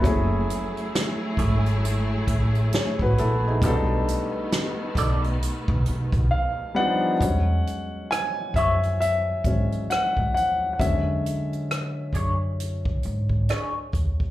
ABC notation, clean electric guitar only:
X:1
M:4/4
L:1/8
Q:"Swing 16ths" 1/4=67
K:E
V:1 name="Clean electric guitar"
z3 [A,EG] z4 | z3 [DA=d] z4 | z3 [EGc] z4 | z3 [=DGc] z2 [DGc] z |]